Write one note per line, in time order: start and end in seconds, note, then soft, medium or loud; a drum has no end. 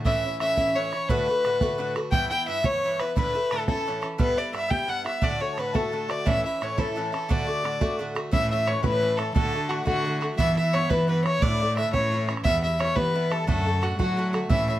0.05 0.24 A2 medium
0.05 0.24 E3 medium
0.05 0.24 C#4 medium
0.05 0.23 E4 medium
0.05 0.38 E5 medium
0.05 0.39 E5 medium
0.05 bodhran medium
0.24 0.40 E3 soft
0.24 0.41 C#4 soft
0.24 0.40 E4 soft
0.40 0.57 A2 medium
0.40 0.57 E3 medium
0.40 0.57 C#4 medium
0.40 0.56 E4 medium
0.40 0.76 E5 medium
0.40 0.77 E5 loud
0.40 bodhran medium
0.57 0.75 A2 medium
0.57 0.76 E3 medium
0.57 0.76 C#4 medium
0.57 0.75 E4 medium
0.57 bodhran medium
0.75 0.92 A2 medium
0.75 0.93 E3 medium
0.75 0.93 C#4 medium
0.75 0.92 E4 medium
0.75 1.06 C#5 medium
0.75 1.11 C#5 medium
0.93 1.09 E3 soft
0.93 1.10 C#4 soft
0.93 1.09 E4 medium
0.93 bodhran soft
1.09 1.27 A2 medium
1.09 1.28 D3 medium
1.09 1.28 A3 medium
1.09 1.27 F#4 loud
1.09 1.81 B4 medium
1.09 1.96 B4 loud
1.09 bodhran medium
1.28 1.43 D3 soft
1.28 1.45 A3 soft
1.28 1.44 F#4 medium
1.44 1.61 A2 medium
1.44 1.61 D3 medium
1.44 1.61 A3 medium
1.44 1.60 F#4 medium
1.44 bodhran medium
1.61 1.77 A2 medium
1.61 1.78 D3 medium
1.61 1.78 A3 medium
1.61 1.79 F#4 medium
1.61 bodhran medium
1.78 1.95 A2 medium
1.78 1.95 D3 medium
1.78 1.96 A3 medium
1.78 1.95 F#4 medium
1.78 1.94 F#5 medium
1.96 2.12 D3 soft
1.96 2.13 A3 medium
1.96 2.12 F#4 medium
1.96 bodhran medium
2.11 2.30 G2 medium
2.11 2.31 E3 medium
2.11 2.31 B3 loud
2.11 2.30 E4 loud
2.11 2.27 G5 medium
2.11 2.29 G5 loud
2.11 bodhran medium
2.29 2.47 E3 soft
2.29 2.48 B3 medium
2.29 2.47 E4 medium
2.29 2.45 G5 medium
2.29 2.45 G5 loud
2.47 2.64 G2 medium
2.47 2.64 E3 medium
2.47 2.64 B3 medium
2.47 2.63 E4 medium
2.47 2.64 E5 medium
2.47 2.67 E5 loud
2.64 2.82 G2 medium
2.64 2.83 E3 medium
2.64 2.83 B3 medium
2.64 2.82 E4 medium
2.64 3.00 C#5 medium
2.64 3.01 C#5 loud
2.64 bodhran medium
2.83 2.99 G2 medium
2.83 3.00 E3 medium
2.83 3.00 B3 medium
2.83 2.99 E4 medium
2.99 3.16 E3 soft
2.99 3.17 B3 soft
2.99 3.16 E4 medium
2.99 3.14 B4 medium
2.99 3.16 B4 medium
2.99 bodhran medium
3.15 3.34 A2 medium
3.15 3.35 D3 medium
3.15 3.34 A3 medium
3.15 3.33 E4 loud
3.15 3.51 B4 medium
3.15 3.54 B4 medium
3.15 bodhran medium
3.35 3.51 D3 soft
3.35 3.51 A3 medium
3.35 3.51 E4 medium
3.51 3.67 A2 medium
3.51 3.68 D3 medium
3.51 3.68 A3 medium
3.51 3.67 E4 medium
3.51 3.64 A4 medium
3.51 3.67 A4 medium
3.51 bodhran medium
3.66 3.86 E3 medium
3.66 3.86 C#4 medium
3.66 3.86 E4 medium
3.66 4.03 A4 medium
3.66 4.04 A4 medium
3.66 bodhran medium
3.70 3.85 A2 soft
3.87 4.03 A2 medium
3.87 4.03 E3 medium
3.87 4.02 C#4 medium
3.87 4.01 E4 medium
4.02 4.18 E3 soft
4.02 4.19 C#4 soft
4.02 4.18 E4 soft
4.02 bodhran medium
4.18 4.37 G2 medium
4.18 4.37 G3 medium
4.18 4.37 B3 medium
4.18 4.36 E4 medium
4.18 4.51 B4 medium
4.18 4.39 B4 loud
4.18 bodhran medium
4.37 4.52 G3 soft
4.37 4.53 B3 medium
4.37 4.53 E4 soft
4.37 4.54 D5 medium
4.53 4.70 G2 medium
4.53 4.70 G3 medium
4.53 4.69 B3 medium
4.53 4.68 E4 medium
4.53 4.69 E5 medium
4.53 4.72 E5 medium
4.53 bodhran medium
4.69 4.87 G2 soft
4.69 4.88 G3 medium
4.69 4.88 B3 medium
4.69 4.88 E4 medium
4.69 4.89 G5 medium
4.69 4.91 G5 medium
4.69 bodhran medium
4.88 5.05 G2 soft
4.88 5.05 G3 medium
4.88 5.04 B3 medium
4.88 5.03 E4 medium
4.88 5.23 F#5 medium
4.88 5.06 F#5 loud
5.04 5.21 G3 soft
5.04 5.22 B3 soft
5.04 5.22 E4 medium
5.04 5.25 E5 medium
5.04 bodhran medium
5.22 5.40 A2 medium
5.22 5.40 D3 medium
5.22 5.40 A3 medium
5.22 5.39 F#4 medium
5.22 5.41 D5 medium
5.22 5.43 D5 medium
5.22 bodhran medium
5.40 5.57 D3 soft
5.40 5.58 A3 soft
5.40 5.57 F#4 medium
5.40 5.61 C#5 medium
5.40 5.54 C#5 medium
5.53 5.57 A4 soft
5.57 5.74 A2 medium
5.57 5.74 D3 soft
5.57 5.73 A3 medium
5.57 5.72 F#4 medium
5.57 5.72 B4 medium
5.57 5.77 B4 medium
5.57 bodhran medium
5.73 5.91 A2 medium
5.73 5.92 D3 medium
5.73 5.92 A3 medium
5.73 5.92 F#4 medium
5.73 6.10 A4 medium
5.73 6.12 A4 medium
5.73 bodhran medium
5.92 6.09 A2 soft
5.92 6.09 D3 medium
5.92 6.09 A3 medium
5.92 6.07 F#4 medium
6.08 6.26 D3 medium
6.08 6.26 A3 soft
6.08 6.25 F#4 soft
6.08 6.24 D5 medium
6.08 6.28 D5 medium
6.08 bodhran medium
6.26 6.44 A2 medium
6.26 6.44 E3 medium
6.26 6.44 C#4 medium
6.26 6.43 E4 loud
6.26 6.43 E5 medium
6.26 6.44 E5 loud
6.26 bodhran medium
6.44 6.61 E3 soft
6.44 6.61 C#4 medium
6.44 6.61 E4 medium
6.44 6.61 E5 medium
6.44 6.65 E5 medium
6.61 6.78 A2 medium
6.61 6.77 E3 medium
6.61 6.77 C#4 medium
6.61 6.76 E4 medium
6.61 6.78 C#5 medium
6.61 6.81 C#5 medium
6.61 bodhran medium
6.78 6.95 A2 soft
6.78 6.96 E3 medium
6.78 6.96 C#4 medium
6.78 6.96 E4 medium
6.78 7.12 A4 medium
6.78 7.14 A4 medium
6.78 bodhran medium
6.96 7.12 A2 medium
6.96 7.13 E3 medium
6.96 7.12 C#4 medium
6.96 7.11 E4 medium
7.12 7.29 E3 soft
7.12 7.29 C#4 soft
7.12 7.29 E4 medium
7.12 7.30 A4 medium
7.12 7.33 A4 medium
7.12 bodhran medium
7.29 7.47 A2 medium
7.29 7.47 D3 medium
7.29 7.47 A3 medium
7.29 7.45 F#4 medium
7.29 7.96 D5 medium
7.29 8.00 D5 medium
7.29 bodhran medium
7.47 7.63 D3 soft
7.47 7.63 A3 soft
7.47 7.64 F#4 medium
7.63 7.80 A2 soft
7.63 7.81 D3 medium
7.63 7.80 A3 medium
7.63 7.80 F#4 medium
7.63 bodhran medium
7.81 7.97 A2 medium
7.81 7.98 D3 medium
7.81 7.99 A3 medium
7.81 7.99 F#4 medium
7.81 bodhran medium
7.99 8.15 A2 medium
7.99 8.16 D3 medium
7.99 8.15 A3 medium
7.99 8.14 F#4 medium
8.15 8.32 D3 soft
8.15 8.32 A3 medium
8.15 8.32 F#4 medium
8.15 bodhran medium
8.32 8.50 A2 medium
8.32 8.80 A2 medium
8.32 8.51 E3 medium
8.32 8.51 C#4 medium
8.32 8.50 E4 loud
8.32 8.49 E5 medium
8.32 8.50 E5 loud
8.32 bodhran medium
8.51 8.66 E3 soft
8.51 8.66 C#4 medium
8.51 8.67 E4 medium
8.51 8.68 E5 medium
8.51 8.69 E5 medium
8.66 8.83 A2 medium
8.66 8.83 E3 medium
8.66 8.82 C#4 medium
8.66 8.82 E4 medium
8.66 8.84 C#5 medium
8.66 bodhran medium
8.83 9.31 A2 medium
8.83 8.99 A2 soft
8.83 9.01 E3 medium
8.83 9.01 C#4 medium
8.83 9.02 E4 medium
8.83 9.20 B4 medium
8.83 9.19 B4 loud
8.83 bodhran medium
9.01 9.18 A2 medium
9.01 9.19 E3 medium
9.01 9.18 C#4 medium
9.01 9.17 E4 medium
9.17 9.35 E3 soft
9.17 9.35 C#4 soft
9.17 9.35 E4 medium
9.17 9.34 A4 loud
9.17 9.33 A4 medium
9.17 bodhran medium
9.34 9.53 A2 medium
9.34 9.83 D3 medium
9.34 9.54 D3 medium
9.34 9.53 A3 medium
9.34 9.52 F#4 medium
9.34 9.71 A4 medium
9.34 9.71 A4 loud
9.34 bodhran medium
9.53 9.69 D3 soft
9.53 9.69 A3 soft
9.53 9.70 F#4 medium
9.69 9.86 A2 medium
9.69 9.86 D3 medium
9.69 9.85 A3 medium
9.69 9.86 F#4 medium
9.69 9.85 F#4 medium
9.69 9.84 F#4 medium
9.69 bodhran medium
9.85 10.04 A2 medium
9.85 10.34 D3 loud
9.85 10.04 D3 medium
9.85 10.05 A3 medium
9.85 10.05 F#4 medium
9.85 10.23 F#4 loud
9.85 10.23 F#4 medium
9.85 bodhran medium
10.05 10.22 A2 medium
10.05 10.22 D3 medium
10.05 10.21 A3 medium
10.05 10.20 F#4 medium
10.21 10.39 D3 soft
10.21 10.39 A3 medium
10.21 10.38 F#4 medium
10.21 bodhran medium
10.38 10.57 G2 medium
10.38 10.86 E3 loud
10.38 10.57 E3 medium
10.38 10.57 B3 medium
10.38 10.56 E4 loud
10.38 10.55 E5 loud
10.38 10.56 E5 medium
10.38 bodhran medium
10.57 10.73 E3 soft
10.57 10.74 B3 medium
10.57 10.74 E4 soft
10.57 10.75 E5 loud
10.57 10.74 E5 medium
10.73 10.90 G2 medium
10.73 10.90 E3 medium
10.73 10.89 B3 medium
10.73 10.89 E4 medium
10.73 10.91 C#5 loud
10.73 10.91 C#5 medium
10.73 bodhran medium
10.90 11.06 G2 medium
10.90 11.37 E3 loud
10.90 11.07 E3 medium
10.90 11.08 B3 medium
10.90 11.08 E4 medium
10.90 11.08 B4 medium
10.90 11.08 B4 loud
10.90 bodhran medium
11.07 11.24 G2 soft
11.07 11.25 E3 medium
11.07 11.25 B3 medium
11.07 11.24 E4 medium
11.07 11.24 B4 medium
11.07 11.26 B4 medium
11.24 11.42 E3 soft
11.24 11.42 B3 soft
11.24 11.42 E4 medium
11.24 11.43 C#5 loud
11.24 11.43 C#5 medium
11.24 bodhran medium
11.42 11.89 A2 medium
11.42 11.60 A2 medium
11.42 11.60 D3 medium
11.42 11.60 A3 medium
11.42 11.59 E4 medium
11.42 11.77 D5 loud
11.42 11.78 D5 medium
11.42 bodhran medium
11.60 11.77 D3 soft
11.60 11.77 A3 soft
11.60 11.77 E4 medium
11.76 11.93 A2 medium
11.76 11.94 D3 medium
11.76 11.94 A3 medium
11.76 11.92 E4 medium
11.76 11.93 E5 medium
11.76 11.92 E5 loud
11.76 bodhran medium
11.93 12.41 A2 loud
11.93 12.10 A2 medium
11.93 12.11 E3 medium
11.93 12.12 C#4 medium
11.93 12.11 E4 medium
11.93 12.30 C#5 medium
11.93 bodhran medium
12.12 12.28 A2 medium
12.12 12.29 E3 medium
12.12 12.29 C#4 medium
12.12 12.27 E4 medium
12.29 12.46 E3 soft
12.29 12.46 C#4 medium
12.29 12.45 E4 medium
12.29 bodhran medium
12.37 bodhran medium
12.44 12.92 E2 medium
12.44 12.63 G2 medium
12.44 12.64 G3 medium
12.44 12.63 B3 medium
12.44 12.62 E4 medium
12.44 12.61 E5 loud
12.44 12.62 E5 medium
12.44 bodhran medium
12.63 12.79 G3 soft
12.63 12.79 B3 soft
12.63 12.80 E4 medium
12.63 12.82 E5 medium
12.63 12.80 E5 medium
12.79 12.96 G2 medium
12.79 12.95 G3 medium
12.79 12.94 B3 medium
12.79 12.94 E4 medium
12.79 12.97 C#5 loud
12.79 12.97 C#5 medium
12.79 bodhran medium
12.95 13.13 G2 medium
12.95 13.44 E3 medium
12.95 13.14 G3 medium
12.95 13.14 B3 medium
12.95 13.14 E4 medium
12.95 13.33 B4 medium
12.95 13.32 B4 medium
12.95 bodhran medium
13.14 13.31 G2 medium
13.14 13.31 G3 medium
13.14 13.30 B3 medium
13.14 13.29 E4 medium
13.30 13.47 G3 soft
13.30 13.48 B3 medium
13.30 13.47 E4 medium
13.30 13.48 A4 medium
13.30 13.46 A4 medium
13.30 bodhran medium
13.47 13.95 F#2 loud
13.47 13.66 A2 medium
13.47 13.66 D3 medium
13.47 13.66 A3 medium
13.47 13.65 F#4 medium
13.47 13.84 A4 medium
13.47 13.84 A4 loud
13.47 bodhran medium
13.66 13.81 D3 soft
13.66 13.82 A3 soft
13.66 13.82 F#4 medium
13.82 13.98 A2 medium
13.82 13.98 D3 medium
13.82 13.98 A3 medium
13.82 13.98 F#4 medium
13.82 13.97 F#4 medium
13.82 13.98 F#4 medium
13.82 bodhran medium
13.99 14.16 A2 medium
13.99 14.17 D3 medium
13.99 14.46 F#3 medium
13.99 14.17 A3 medium
13.99 14.17 F#4 medium
13.99 14.35 F#4 medium
13.99 bodhran medium
14.17 14.33 A2 medium
14.17 14.34 D3 medium
14.17 14.33 A3 medium
14.17 14.32 F#4 medium
14.33 14.50 D3 medium
14.33 14.50 A3 medium
14.33 14.50 F#4 medium
14.33 bodhran medium
14.50 14.68 A2 medium
14.50 14.80 A2 medium
14.50 14.68 E3 medium
14.50 14.68 C#4 medium
14.50 14.67 E4 medium
14.50 14.67 E5 loud
14.50 14.67 E5 medium
14.50 bodhran medium
14.68 14.80 E3 soft
14.68 14.80 C#4 medium
14.68 14.80 E4 medium
14.68 14.80 E5 medium
14.68 14.76 E5 medium